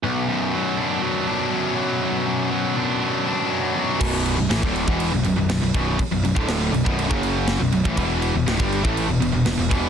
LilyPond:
<<
  \new Staff \with { instrumentName = "Distorted electric guitar" } { \clef bass \time 4/4 \key b \minor \tempo 4 = 121 b,,8 fis,8 b,8 fis,8 b,8 d'8 fis8 b,8 | b,,8 fis,8 b,8 fis,8 b,8 d'8 fis8 b,8 | <b,, fis, b,>8. <b,, fis,>16 <a, e>16 <d, a, d>8 <e, b, e>8 <b,, fis,>16 <b,, fis,>16 <b,, fis,>16 <b,, fis,>16 <b,, fis,>16 <b,, fis, b,>8 | r16 <b,, fis,>16 <b,, fis,>16 <d, a, d>8. <b,, fis,>16 <b,, fis, b,>8 <fis, cis fis>4 <b,, fis,>16 <b,, fis,>16 <a, e>16 |
<e, b, e>8. <e, b,>16 <d, a,>16 <g, d g>8 <a, e a>8 <e, b,>16 <e, b,>16 <e, b,>16 <e, b,>16 <e, b,>16 <e, b, e>8 | }
  \new Staff \with { instrumentName = "Distorted electric guitar" } { \clef bass \time 4/4 \key b \minor b,,8 fis,8 fis8 d'8 fis8 b,8 fis,8 fis8 | b,,8 fis,8 fis8 d'8 fis8 b,8 fis,8 fis8 | <b,, fis, b,>8. <b,, fis,>16 <a, e>16 <d, a, d>8 <e, b, e>8 <b,, fis,>16 <b,, fis,>16 <b,, fis,>16 <b,, fis,>16 <b,, fis,>16 <b,, fis, b,>8 | r16 <b,, fis,>16 <b,, fis,>16 <d, a, d>8. <b,, fis,>16 <b,, fis, b,>8 <fis, cis fis>4 <b,, fis,>16 <b,, fis,>16 <a, e>16 |
<e, b, e>8. <e, b,>16 <d, a,>16 <g, d g>8 <a, e a>8 <e, b,>16 <e, b,>16 <e, b,>16 <e, b,>16 <e, b,>16 <e, b, e>8 | }
  \new Staff \with { instrumentName = "Overdriven electric guitar" } { \clef bass \time 4/4 \key b \minor r1 | r1 | <b,, fis, b,>8. <b,, fis,>16 <a, e>16 <d, a, d>8 <e, b, e>8 <b,, fis,>16 <b,, fis,>16 <b,, fis,>16 <b,, fis,>16 <b,, fis,>16 <b,, fis, b,>8 | r16 <b,, fis,>16 <b,, fis,>16 <d, a, d>8. <b,, fis,>16 <b,, fis, b,>8 <fis, cis fis>4 <b,, fis,>16 <b,, fis,>16 <a, e>16 |
<e, b, e>8. <e, b,>16 <d, a,>16 <g, d g>8 <a, e a>8 <e, b,>16 <e, b,>16 <e, b,>16 <e, b,>16 <e, b,>16 <e, b, e>8 | }
  \new Staff \with { instrumentName = "Picked electric bass" } { \clef bass \time 4/4 \key b \minor r1 | r1 | b,,,8. b,,,16 a,,16 d,,8 e,,8 b,,,16 b,,,16 b,,,16 b,,,16 b,,,16 b,,,8 | r16 b,,,16 b,,,16 d,,8. b,,,16 b,,,8 fis,,4 b,,,16 b,,,16 a,,16 |
e,,8. e,,16 d,,16 g,,8 a,,8 e,,16 e,,16 e,,16 e,,16 e,,16 e,,8 | }
  \new DrumStaff \with { instrumentName = "Drums" } \drummode { \time 4/4 r4 r4 r4 r4 | r4 r4 r4 r4 | <cymc bd>8 cymc8 <cymc sn>16 bd16 cymc16 bd16 cymc8 cymc8 <cymc sn>8 <cymc bd>8 | <cymc bd>8 cymc16 bd16 <cymc sn>8 cymc16 bd16 cymc16 bd16 cymc8 <cymc sn>8 cymc16 bd16 |
<cymc bd>8 cymc8 <cymc sn>16 bd16 cymc16 bd16 cymc8 cymc8 <cymc sn>8 <cymc bd>8 | }
>>